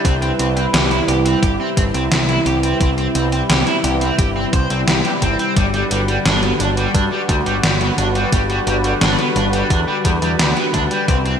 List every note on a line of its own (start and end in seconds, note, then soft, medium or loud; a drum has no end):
0.00 11.04 G3 medium
0.00 5.53 E4 medium
0.00 5.53 B4 medium
0.05 0.31 C2 loud
0.05 5.53 C3 medium
0.05 0.13 C4 medium
0.05 kick loud
0.05 closed hi-hat medium
0.22 0.31 C4 medium
0.22 closed hi-hat soft
0.39 0.65 C2 medium
0.39 0.48 C4 medium
0.39 closed hi-hat medium
0.56 0.65 C4 medium
0.56 closed hi-hat medium
0.74 1.00 C2 loud
0.74 0.87 G4 loud
0.74 snare loud
0.74 closed hi-hat medium
0.91 1.00 E4 medium
0.91 closed hi-hat soft
1.08 1.34 C2 loud
1.08 1.17 G4 medium
1.08 closed hi-hat medium
1.25 1.38 C4 medium
1.25 closed hi-hat medium
1.43 1.56 G1 medium
1.43 1.51 G4 medium
1.43 kick loud
1.43 closed hi-hat medium
1.60 1.69 C4 loud
1.77 1.90 G1 medium
1.77 1.82 C4 loud
1.77 kick loud
1.77 closed hi-hat medium
1.94 2.07 C2 medium
1.94 2.03 C4 medium
1.94 closed hi-hat medium
2.11 2.38 C2 medium
2.11 2.20 C4 loud
2.11 snare loud
2.11 closed hi-hat medium
2.29 2.38 E4 medium
2.29 closed hi-hat soft
2.46 2.72 C2 medium
2.46 2.55 G4 medium
2.46 closed hi-hat medium
2.63 2.76 C4 medium
2.63 closed hi-hat medium
2.81 3.07 C2 medium
2.81 2.89 C4 medium
2.81 kick loud
2.81 closed hi-hat medium
2.98 3.07 C4 loud
2.98 closed hi-hat soft
3.15 3.41 C2 loud
3.15 3.24 C4 medium
3.15 closed hi-hat medium
3.32 3.41 C4 medium
3.32 closed hi-hat medium
3.49 3.63 C2 medium
3.49 3.63 G4 loud
3.49 snare loud
3.49 closed hi-hat medium
3.67 3.76 E4 medium
3.67 closed hi-hat soft
3.84 4.10 C2 loud
3.84 3.93 G4 medium
3.84 closed hi-hat medium
4.01 4.14 C4 medium
4.01 closed hi-hat soft
4.18 4.45 G1 medium
4.18 4.27 G4 medium
4.18 kick loud
4.18 closed hi-hat medium
4.36 4.44 C4 loud
4.53 4.66 C2 medium
4.53 4.66 C5 medium
4.53 kick loud
4.53 closed hi-hat medium
4.70 4.83 C2 medium
4.70 4.79 C4 loud
4.70 closed hi-hat soft
4.87 5.01 C2 medium
4.87 4.96 C4 medium
4.87 snare loud
4.87 closed hi-hat medium
5.05 5.10 G4 medium
5.05 closed hi-hat soft
5.22 5.35 G1 medium
5.22 5.35 C4 medium
5.22 kick medium
5.22 closed hi-hat medium
5.39 5.52 C4 loud
5.39 closed hi-hat medium
5.57 5.83 G1 medium
5.57 11.04 D3 medium
5.57 5.65 G3 medium
5.57 11.04 F#4 medium
5.57 11.40 B4 medium
5.57 kick loud
5.57 closed hi-hat medium
5.74 5.82 G3 medium
5.74 closed hi-hat soft
5.91 6.17 G1 medium
5.91 6.00 G3 medium
5.91 closed hi-hat medium
6.08 6.17 G3 medium
6.08 closed hi-hat soft
6.25 6.52 G1 medium
6.25 6.39 D4 loud
6.25 snare loud
6.25 closed hi-hat medium
6.43 6.51 B3 medium
6.43 closed hi-hat soft
6.60 6.86 G1 loud
6.60 6.69 D4 medium
6.60 closed hi-hat medium
6.77 6.90 G3 medium
6.77 closed hi-hat soft
6.94 7.08 G2 medium
6.94 7.03 D4 medium
6.94 kick loud
6.94 closed hi-hat medium
7.12 7.20 G3 loud
7.29 7.42 D2 medium
7.29 7.34 G3 medium
7.29 kick loud
7.29 closed hi-hat medium
7.46 7.59 G1 medium
7.46 7.55 G3 medium
7.46 closed hi-hat soft
7.63 7.90 G1 medium
7.63 7.72 G3 loud
7.63 snare loud
7.63 closed hi-hat medium
7.81 7.89 B3 medium
7.81 closed hi-hat soft
7.98 8.24 G1 medium
7.98 8.07 D4 medium
7.98 closed hi-hat medium
8.15 8.28 G3 medium
8.15 closed hi-hat soft
8.32 8.59 G1 medium
8.32 8.41 G3 medium
8.32 kick loud
8.32 closed hi-hat medium
8.50 8.58 G3 loud
8.50 closed hi-hat soft
8.67 8.93 G1 loud
8.67 8.76 G3 medium
8.67 closed hi-hat medium
8.84 8.93 G3 medium
8.84 closed hi-hat medium
9.01 9.14 G1 medium
9.01 9.14 D4 loud
9.01 snare loud
9.01 closed hi-hat medium
9.19 9.27 B3 medium
9.19 closed hi-hat soft
9.36 9.62 G1 loud
9.36 9.45 D4 medium
9.36 closed hi-hat medium
9.53 9.66 G3 medium
9.53 closed hi-hat soft
9.70 9.83 E2 medium
9.70 9.79 D4 medium
9.70 kick loud
9.70 closed hi-hat medium
9.88 9.96 G3 loud
10.05 10.18 E2 medium
10.05 10.10 G3 loud
10.05 kick loud
10.05 closed hi-hat medium
10.22 10.35 E2 medium
10.22 10.31 G3 medium
10.22 closed hi-hat medium
10.39 10.52 D2 medium
10.39 10.48 G3 loud
10.39 snare loud
10.39 closed hi-hat medium
10.57 10.65 B3 medium
10.57 closed hi-hat soft
10.74 10.87 D2 medium
10.74 10.83 D4 medium
10.74 kick medium
10.74 closed hi-hat medium
10.91 11.04 G3 medium
10.91 closed hi-hat soft
11.08 11.34 C2 loud
11.08 11.40 C3 medium
11.08 11.40 G3 medium
11.08 11.17 C4 medium
11.08 11.40 E4 medium
11.08 kick loud
11.08 closed hi-hat medium
11.26 11.34 C4 loud
11.26 closed hi-hat soft